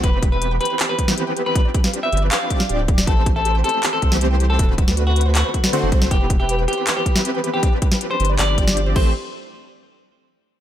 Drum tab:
CC |--------------------------------|--------------------------------|--------------------------------|--------------------------------|
HH |x---x---x---xx--x---x---x---x---|x---x---x---xx--x---x---x---x---|x---x---x---xx--x---x---x---x---|x---x---x---xx--x---x---x---x---|
CP |----------------x---------------|----------------x---------------|----------------x---------------|----------------x---------------|
SD |----------------------o---------|------o---------------o-------o-|----------------------o---------|------o---------------o-------o-|
BD |o---o---------------o-----------|o---o---------------o-------o---|o---o---------------o-----------|o---o---------------o-------o---|

CC |--------------------------------|----------------------------x---|--------------------------------|
HH |x---x---x---xx--x---x---x---x---|x---x---x---xx--x---x---x-------|--------------------------------|
CP |----------------x---------------|----------------x---------------|--------------------------------|
SD |----------------------o---------|------o---------------o---------|--------------------------------|
BD |o---o---------------o-----------|o---o---------------o-------o---|--------------------------------|